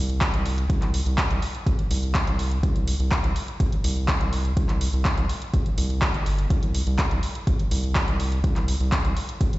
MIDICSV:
0, 0, Header, 1, 3, 480
1, 0, Start_track
1, 0, Tempo, 483871
1, 692, Time_signature, 4, 2, 24, 8
1, 9510, End_track
2, 0, Start_track
2, 0, Title_t, "Analog synth bass"
2, 0, Program_c, 0, 38
2, 0, Note_on_c, 0, 36, 100
2, 290, Note_off_c, 0, 36, 0
2, 334, Note_on_c, 0, 36, 96
2, 650, Note_off_c, 0, 36, 0
2, 692, Note_on_c, 0, 36, 100
2, 1011, Note_off_c, 0, 36, 0
2, 1054, Note_on_c, 0, 36, 88
2, 1240, Note_off_c, 0, 36, 0
2, 1294, Note_on_c, 0, 36, 98
2, 1386, Note_off_c, 0, 36, 0
2, 1651, Note_on_c, 0, 31, 100
2, 1747, Note_off_c, 0, 31, 0
2, 1892, Note_on_c, 0, 36, 95
2, 2211, Note_off_c, 0, 36, 0
2, 2254, Note_on_c, 0, 36, 97
2, 2570, Note_off_c, 0, 36, 0
2, 2612, Note_on_c, 0, 36, 96
2, 2931, Note_off_c, 0, 36, 0
2, 2974, Note_on_c, 0, 36, 88
2, 3160, Note_off_c, 0, 36, 0
2, 3214, Note_on_c, 0, 36, 94
2, 3305, Note_off_c, 0, 36, 0
2, 3572, Note_on_c, 0, 31, 101
2, 3667, Note_off_c, 0, 31, 0
2, 3811, Note_on_c, 0, 36, 99
2, 4130, Note_off_c, 0, 36, 0
2, 4174, Note_on_c, 0, 36, 100
2, 4490, Note_off_c, 0, 36, 0
2, 4532, Note_on_c, 0, 36, 98
2, 4851, Note_off_c, 0, 36, 0
2, 4893, Note_on_c, 0, 36, 86
2, 5079, Note_off_c, 0, 36, 0
2, 5134, Note_on_c, 0, 36, 96
2, 5225, Note_off_c, 0, 36, 0
2, 5492, Note_on_c, 0, 31, 101
2, 5587, Note_off_c, 0, 31, 0
2, 5731, Note_on_c, 0, 36, 98
2, 6050, Note_off_c, 0, 36, 0
2, 6094, Note_on_c, 0, 31, 97
2, 6410, Note_off_c, 0, 31, 0
2, 6451, Note_on_c, 0, 36, 99
2, 6770, Note_off_c, 0, 36, 0
2, 6815, Note_on_c, 0, 36, 88
2, 7000, Note_off_c, 0, 36, 0
2, 7054, Note_on_c, 0, 36, 94
2, 7146, Note_off_c, 0, 36, 0
2, 7412, Note_on_c, 0, 31, 100
2, 7507, Note_off_c, 0, 31, 0
2, 7652, Note_on_c, 0, 36, 98
2, 7971, Note_off_c, 0, 36, 0
2, 8014, Note_on_c, 0, 36, 100
2, 8330, Note_off_c, 0, 36, 0
2, 8372, Note_on_c, 0, 36, 101
2, 8691, Note_off_c, 0, 36, 0
2, 8734, Note_on_c, 0, 36, 85
2, 8920, Note_off_c, 0, 36, 0
2, 8974, Note_on_c, 0, 36, 99
2, 9066, Note_off_c, 0, 36, 0
2, 9332, Note_on_c, 0, 31, 98
2, 9427, Note_off_c, 0, 31, 0
2, 9510, End_track
3, 0, Start_track
3, 0, Title_t, "Drums"
3, 94, Note_on_c, 9, 42, 38
3, 193, Note_off_c, 9, 42, 0
3, 210, Note_on_c, 9, 39, 124
3, 212, Note_on_c, 9, 36, 108
3, 212, Note_on_c, 9, 42, 66
3, 310, Note_off_c, 9, 39, 0
3, 311, Note_off_c, 9, 36, 0
3, 311, Note_off_c, 9, 42, 0
3, 335, Note_on_c, 9, 42, 41
3, 434, Note_off_c, 9, 42, 0
3, 452, Note_on_c, 9, 46, 87
3, 551, Note_off_c, 9, 46, 0
3, 575, Note_on_c, 9, 42, 40
3, 674, Note_off_c, 9, 42, 0
3, 692, Note_on_c, 9, 36, 125
3, 692, Note_on_c, 9, 42, 64
3, 791, Note_off_c, 9, 36, 0
3, 791, Note_off_c, 9, 42, 0
3, 813, Note_on_c, 9, 39, 38
3, 814, Note_on_c, 9, 42, 40
3, 912, Note_off_c, 9, 39, 0
3, 913, Note_off_c, 9, 42, 0
3, 932, Note_on_c, 9, 46, 103
3, 1031, Note_off_c, 9, 46, 0
3, 1054, Note_on_c, 9, 42, 38
3, 1154, Note_off_c, 9, 42, 0
3, 1171, Note_on_c, 9, 39, 122
3, 1172, Note_on_c, 9, 36, 107
3, 1172, Note_on_c, 9, 42, 66
3, 1270, Note_off_c, 9, 39, 0
3, 1271, Note_off_c, 9, 36, 0
3, 1271, Note_off_c, 9, 42, 0
3, 1295, Note_on_c, 9, 42, 38
3, 1394, Note_off_c, 9, 42, 0
3, 1412, Note_on_c, 9, 46, 89
3, 1512, Note_off_c, 9, 46, 0
3, 1535, Note_on_c, 9, 42, 40
3, 1634, Note_off_c, 9, 42, 0
3, 1652, Note_on_c, 9, 36, 117
3, 1652, Note_on_c, 9, 42, 70
3, 1751, Note_off_c, 9, 36, 0
3, 1752, Note_off_c, 9, 42, 0
3, 1774, Note_on_c, 9, 42, 38
3, 1874, Note_off_c, 9, 42, 0
3, 1892, Note_on_c, 9, 46, 107
3, 1991, Note_off_c, 9, 46, 0
3, 2014, Note_on_c, 9, 42, 38
3, 2114, Note_off_c, 9, 42, 0
3, 2131, Note_on_c, 9, 39, 119
3, 2132, Note_on_c, 9, 36, 113
3, 2132, Note_on_c, 9, 42, 64
3, 2230, Note_off_c, 9, 39, 0
3, 2231, Note_off_c, 9, 36, 0
3, 2231, Note_off_c, 9, 42, 0
3, 2255, Note_on_c, 9, 42, 40
3, 2354, Note_off_c, 9, 42, 0
3, 2372, Note_on_c, 9, 46, 96
3, 2471, Note_off_c, 9, 46, 0
3, 2495, Note_on_c, 9, 42, 39
3, 2594, Note_off_c, 9, 42, 0
3, 2612, Note_on_c, 9, 36, 122
3, 2612, Note_on_c, 9, 42, 64
3, 2711, Note_off_c, 9, 36, 0
3, 2711, Note_off_c, 9, 42, 0
3, 2735, Note_on_c, 9, 42, 38
3, 2834, Note_off_c, 9, 42, 0
3, 2852, Note_on_c, 9, 46, 111
3, 2952, Note_off_c, 9, 46, 0
3, 2975, Note_on_c, 9, 42, 37
3, 3074, Note_off_c, 9, 42, 0
3, 3091, Note_on_c, 9, 39, 120
3, 3092, Note_on_c, 9, 36, 105
3, 3092, Note_on_c, 9, 42, 60
3, 3190, Note_off_c, 9, 39, 0
3, 3191, Note_off_c, 9, 36, 0
3, 3191, Note_off_c, 9, 42, 0
3, 3214, Note_on_c, 9, 42, 37
3, 3314, Note_off_c, 9, 42, 0
3, 3332, Note_on_c, 9, 46, 94
3, 3431, Note_off_c, 9, 46, 0
3, 3454, Note_on_c, 9, 42, 39
3, 3554, Note_off_c, 9, 42, 0
3, 3572, Note_on_c, 9, 36, 123
3, 3572, Note_on_c, 9, 42, 65
3, 3671, Note_off_c, 9, 36, 0
3, 3671, Note_off_c, 9, 42, 0
3, 3694, Note_on_c, 9, 42, 37
3, 3794, Note_off_c, 9, 42, 0
3, 3812, Note_on_c, 9, 46, 115
3, 3911, Note_off_c, 9, 46, 0
3, 3934, Note_on_c, 9, 42, 37
3, 4033, Note_off_c, 9, 42, 0
3, 4050, Note_on_c, 9, 39, 122
3, 4052, Note_on_c, 9, 36, 112
3, 4052, Note_on_c, 9, 42, 64
3, 4150, Note_off_c, 9, 39, 0
3, 4151, Note_off_c, 9, 36, 0
3, 4151, Note_off_c, 9, 42, 0
3, 4174, Note_on_c, 9, 42, 38
3, 4273, Note_off_c, 9, 42, 0
3, 4292, Note_on_c, 9, 46, 93
3, 4391, Note_off_c, 9, 46, 0
3, 4414, Note_on_c, 9, 42, 39
3, 4513, Note_off_c, 9, 42, 0
3, 4532, Note_on_c, 9, 36, 121
3, 4532, Note_on_c, 9, 42, 62
3, 4631, Note_off_c, 9, 36, 0
3, 4631, Note_off_c, 9, 42, 0
3, 4653, Note_on_c, 9, 39, 36
3, 4654, Note_on_c, 9, 42, 38
3, 4752, Note_off_c, 9, 39, 0
3, 4753, Note_off_c, 9, 42, 0
3, 4772, Note_on_c, 9, 46, 103
3, 4871, Note_off_c, 9, 46, 0
3, 4894, Note_on_c, 9, 42, 38
3, 4993, Note_off_c, 9, 42, 0
3, 5010, Note_on_c, 9, 39, 112
3, 5012, Note_on_c, 9, 36, 110
3, 5012, Note_on_c, 9, 42, 65
3, 5110, Note_off_c, 9, 39, 0
3, 5111, Note_off_c, 9, 36, 0
3, 5111, Note_off_c, 9, 42, 0
3, 5134, Note_on_c, 9, 42, 36
3, 5233, Note_off_c, 9, 42, 0
3, 5252, Note_on_c, 9, 46, 92
3, 5351, Note_off_c, 9, 46, 0
3, 5374, Note_on_c, 9, 42, 38
3, 5474, Note_off_c, 9, 42, 0
3, 5492, Note_on_c, 9, 36, 118
3, 5492, Note_on_c, 9, 42, 66
3, 5591, Note_off_c, 9, 36, 0
3, 5591, Note_off_c, 9, 42, 0
3, 5614, Note_on_c, 9, 42, 37
3, 5713, Note_off_c, 9, 42, 0
3, 5731, Note_on_c, 9, 46, 107
3, 5831, Note_off_c, 9, 46, 0
3, 5854, Note_on_c, 9, 42, 37
3, 5953, Note_off_c, 9, 42, 0
3, 5970, Note_on_c, 9, 39, 119
3, 5972, Note_on_c, 9, 36, 107
3, 5972, Note_on_c, 9, 42, 63
3, 6069, Note_off_c, 9, 39, 0
3, 6071, Note_off_c, 9, 36, 0
3, 6071, Note_off_c, 9, 42, 0
3, 6094, Note_on_c, 9, 42, 38
3, 6193, Note_off_c, 9, 42, 0
3, 6212, Note_on_c, 9, 46, 90
3, 6311, Note_off_c, 9, 46, 0
3, 6334, Note_on_c, 9, 42, 36
3, 6433, Note_off_c, 9, 42, 0
3, 6451, Note_on_c, 9, 42, 62
3, 6452, Note_on_c, 9, 36, 120
3, 6551, Note_off_c, 9, 36, 0
3, 6551, Note_off_c, 9, 42, 0
3, 6574, Note_on_c, 9, 42, 38
3, 6673, Note_off_c, 9, 42, 0
3, 6691, Note_on_c, 9, 46, 104
3, 6791, Note_off_c, 9, 46, 0
3, 6814, Note_on_c, 9, 42, 37
3, 6913, Note_off_c, 9, 42, 0
3, 6930, Note_on_c, 9, 39, 110
3, 6931, Note_on_c, 9, 42, 61
3, 6932, Note_on_c, 9, 36, 100
3, 7029, Note_off_c, 9, 39, 0
3, 7031, Note_off_c, 9, 36, 0
3, 7031, Note_off_c, 9, 42, 0
3, 7054, Note_on_c, 9, 42, 34
3, 7153, Note_off_c, 9, 42, 0
3, 7171, Note_on_c, 9, 46, 89
3, 7270, Note_off_c, 9, 46, 0
3, 7294, Note_on_c, 9, 42, 38
3, 7393, Note_off_c, 9, 42, 0
3, 7412, Note_on_c, 9, 36, 118
3, 7412, Note_on_c, 9, 42, 65
3, 7511, Note_off_c, 9, 36, 0
3, 7511, Note_off_c, 9, 42, 0
3, 7534, Note_on_c, 9, 42, 37
3, 7633, Note_off_c, 9, 42, 0
3, 7652, Note_on_c, 9, 46, 104
3, 7751, Note_off_c, 9, 46, 0
3, 7774, Note_on_c, 9, 42, 38
3, 7873, Note_off_c, 9, 42, 0
3, 7890, Note_on_c, 9, 39, 114
3, 7892, Note_on_c, 9, 36, 104
3, 7892, Note_on_c, 9, 42, 62
3, 7990, Note_off_c, 9, 39, 0
3, 7991, Note_off_c, 9, 36, 0
3, 7991, Note_off_c, 9, 42, 0
3, 8014, Note_on_c, 9, 42, 38
3, 8113, Note_off_c, 9, 42, 0
3, 8132, Note_on_c, 9, 46, 92
3, 8231, Note_off_c, 9, 46, 0
3, 8254, Note_on_c, 9, 42, 36
3, 8353, Note_off_c, 9, 42, 0
3, 8372, Note_on_c, 9, 36, 114
3, 8372, Note_on_c, 9, 42, 62
3, 8471, Note_off_c, 9, 36, 0
3, 8471, Note_off_c, 9, 42, 0
3, 8493, Note_on_c, 9, 39, 36
3, 8495, Note_on_c, 9, 42, 40
3, 8592, Note_off_c, 9, 39, 0
3, 8594, Note_off_c, 9, 42, 0
3, 8612, Note_on_c, 9, 46, 97
3, 8711, Note_off_c, 9, 46, 0
3, 8734, Note_on_c, 9, 42, 39
3, 8834, Note_off_c, 9, 42, 0
3, 8850, Note_on_c, 9, 39, 111
3, 8852, Note_on_c, 9, 36, 103
3, 8852, Note_on_c, 9, 42, 65
3, 8949, Note_off_c, 9, 39, 0
3, 8951, Note_off_c, 9, 36, 0
3, 8951, Note_off_c, 9, 42, 0
3, 8975, Note_on_c, 9, 42, 37
3, 9074, Note_off_c, 9, 42, 0
3, 9092, Note_on_c, 9, 46, 85
3, 9191, Note_off_c, 9, 46, 0
3, 9214, Note_on_c, 9, 42, 40
3, 9313, Note_off_c, 9, 42, 0
3, 9332, Note_on_c, 9, 36, 114
3, 9332, Note_on_c, 9, 42, 70
3, 9431, Note_off_c, 9, 36, 0
3, 9431, Note_off_c, 9, 42, 0
3, 9455, Note_on_c, 9, 42, 39
3, 9510, Note_off_c, 9, 42, 0
3, 9510, End_track
0, 0, End_of_file